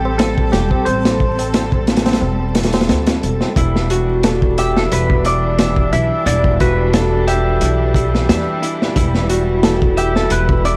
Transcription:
Already playing: A1 G3 C4 G4 A4
0.05 tabla na
0.18 A4, snare, closed hi-hat, tabla na
0.38 kick, tabla na
0.52 E1 G4, snare, closed hi-hat
0.71 kick, tabla na
0.85 A1 C5, closed hi-hat, tabla na
1.05 snare, closed hi-hat, tabla na
1.20 kick
1.39 closed hi-hat, tabla na
1.54 snare, closed hi-hat, tabla na
1.72 kick, tabla na
1.87 snare, closed hi-hat
1.97 snare, closed hi-hat
2.06 snare, closed hi-hat, tabla na
2.13 snare, closed hi-hat
2.21 E1, tabla na
2.40 tabla na
2.55 snare, closed hi-hat
2.63 snare, closed hi-hat
2.73 snare, closed hi-hat, tabla na
2.81 snare, closed hi-hat
2.89 D2, snare, closed hi-hat, tabla na
3.06 snare, closed hi-hat, tabla na
3.23 E1, closed hi-hat
3.41 snare, tabla na
3.56 E1 E3 G3 D4 E4, kick, closed hi-hat
3.76 snare
3.90 F#4, closed hi-hat
4.23 A4, snare, closed hi-hat
4.42 kick
4.58 G4 E5, closed hi-hat
4.76 A4, snare
4.92 E1 E4 B4, closed hi-hat
5.10 kick
5.25 E4 D5, closed hi-hat
5.59 E5, snare, closed hi-hat
5.76 kick
5.93 B1 E4 E5, closed hi-hat
6.26 E1 E4 D5, closed hi-hat
6.44 kick
6.60 F#4 B4, kick, closed hi-hat
6.93 A4, snare, closed hi-hat
7.27 G4 E5, closed hi-hat
7.61 B1 E4, closed hi-hat
7.94 E4, kick, closed hi-hat
8.15 snare
8.29 E2 E5, snare, closed hi-hat
8.62 E4, closed hi-hat
8.82 snare
8.96 E1 E4, kick, closed hi-hat
9.15 snare
9.30 F#4, closed hi-hat
9.63 A4, snare, closed hi-hat
9.82 kick
9.97 G4 E5, closed hi-hat
10.16 A4, snare
10.30 E1 E4 B4, closed hi-hat
10.49 kick
10.65 E4 D5, closed hi-hat

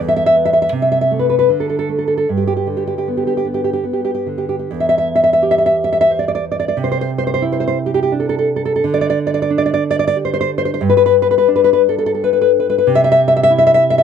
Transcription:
0.00 E2
0.08 E5
0.16 E5
0.26 E5
0.36 B3
0.45 E5
0.53 E5
0.62 E5
0.72 C3
0.82 E5
0.92 E5
1.01 E5
1.11 A3
1.19 B4
1.30 B4
1.39 B4
1.49 D3
1.60 A4
1.70 A4
1.79 A4
1.89 A3
1.99 A4
2.08 A4
2.17 A4
2.29 G2
2.37 G4
2.47 G4
2.57 G4
2.67 D3
2.77 G4
2.87 G4
2.98 G4
3.08 B3
3.17 G4
3.27 G4
3.37 G4
3.45 B3
3.54 G4
3.64 G4
3.73 G4
3.84 B3
3.93 G4
4.05 G4
4.15 G4
4.26 D3
4.38 G4
4.49 G4
4.59 G4
4.71 E2
4.80 E5
4.89 E5
4.98 E5
5.15 E5
5.24 E5
5.33 E5
5.42 G4
5.51 E5
5.58 E5
5.66 E5
5.84 E5
5.93 E5
6.01 E5
6.11 C5
6.19 D5
6.28 D5
6.35 D5
6.52 D5
6.60 D5
6.68 D5
6.77 C3
6.84 C5
6.92 C5
7.01 C5
7.18 C5
7.27 C5
7.34 C5
7.42 E4
7.52 C5
7.60 C5
7.68 C5
7.86 G4
7.94 G4
8.03 G4
8.12 D4
8.20 A4
8.29 A4
8.39 A4
8.56 A4
8.65 A4
8.76 A4
8.84 D3
8.94 D5
9.01 D5
9.10 D5
9.27 D5
9.34 D5
9.42 D5
9.50 D4
9.58 D5
9.66 D5
9.74 D5
9.91 D5
9.99 D5
10.07 D5
10.16 G4
10.25 C5
10.34 C5
10.41 C5
10.58 C5
10.65 C5
10.74 C5
10.81 G2
10.89 B4
10.97 B4
11.06 B4
11.22 B4
11.31 B4
11.38 B4
11.48 D4
11.56 B4
11.64 B4
11.73 B4
11.89 A4
11.98 A4
12.06 A4
12.15 A4
12.24 B4
12.33 B4
12.41 B4
12.60 B4
12.70 B4
12.78 B4
12.87 C3
12.95 E5
13.04 E5
13.12 E5
13.28 E5
13.36 E5
13.43 E5
13.50 E4
13.58 E5
13.67 E5
13.74 E5
13.90 E5
13.98 E5

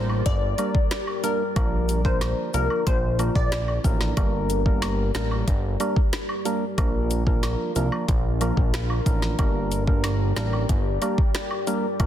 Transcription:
Already playing: A1 G3 A#3 D4 G4 A#4 D5
0.10 high woodblock
0.26 G1 D5, kick, closed hi-hat
0.58 G3 A#3 D4 A#4, closed hi-hat, cabasa, high woodblock
0.75 kick
0.91 finger snap, cross-stick, snare, closed hi-hat
1.07 high woodblock
1.23 G3 A#3 D4 A#4, closed hi-hat, cabasa
1.56 A#1 F3 A#3 D4 F4 A#4, kick, closed hi-hat, high woodblock
1.89 closed hi-hat, cabasa
2.05 F3 A#3 D4 A#4 C5, kick
2.21 cross-stick, snare, closed hi-hat, high woodblock
2.54 C2 F3 A#3 D4 A#4, closed hi-hat, cabasa
2.70 high woodblock
2.87 A#1 C5, kick, closed hi-hat
3.19 F3 A#3 D4 A#4, closed hi-hat, cabasa, high woodblock
3.35 A#1 D5, kick
3.52 finger snap, cross-stick, snare, closed hi-hat
3.68 high woodblock
3.84 A1 F3 A#3 D4 A#4, kick, closed hi-hat, cabasa
4.01 snare
4.17 G1 G3 A#3 D4 G4 A#4 D5, kick, closed hi-hat, high woodblock
4.50 closed hi-hat, cabasa
4.66 G3 A#3 D4 A#4, kick
4.82 snare, closed hi-hat, high woodblock
5.15 A1 G3 A#3 D4 A#4, finger snap, snare, closed hi-hat, cabasa
5.31 high woodblock
5.48 G1, kick, closed hi-hat
5.80 G3 A#3 D4 A#4, closed hi-hat, cabasa, high woodblock
5.96 kick
6.13 finger snap, cross-stick, snare, closed hi-hat
6.29 high woodblock
6.45 G3 A#3 D4 A#4, closed hi-hat, cabasa
6.78 A#1 F3 A#3 D4 F4 A#4, kick, closed hi-hat, high woodblock
7.11 closed hi-hat, cabasa
7.27 F3 A#3 D4 A#4, kick
7.43 snare, closed hi-hat, high woodblock
7.75 C2 F3 A#3 D4 A#4, closed hi-hat, cabasa
7.92 high woodblock
8.08 A#1, kick, closed hi-hat
8.41 F3 A#3 D4 A#4, closed hi-hat, cabasa, high woodblock
8.57 A#1, kick
8.74 finger snap, cross-stick, snare, closed hi-hat
8.90 high woodblock
9.06 A1 F3 A#3 D4 A#4, kick, closed hi-hat, cabasa
9.22 snare
9.39 G1 G3 A#3 D4 G4 A#4 D5, kick, closed hi-hat, high woodblock
9.71 closed hi-hat, cabasa
9.87 G3 A#3 D4 A#4, kick
10.04 snare, closed hi-hat, high woodblock
10.36 A1 G3 A#3 D4 A#4, finger snap, snare, closed hi-hat, cabasa
10.53 high woodblock
10.69 G1, kick, closed hi-hat
11.02 G3 A#3 D4 A#4, closed hi-hat, cabasa, high woodblock
11.18 kick
11.35 finger snap, cross-stick, snare, closed hi-hat
11.51 high woodblock
11.67 G3 A#3 D4 A#4, closed hi-hat, cabasa
11.99 A#1 F3 A#3 D4 A#4, kick, closed hi-hat, high woodblock

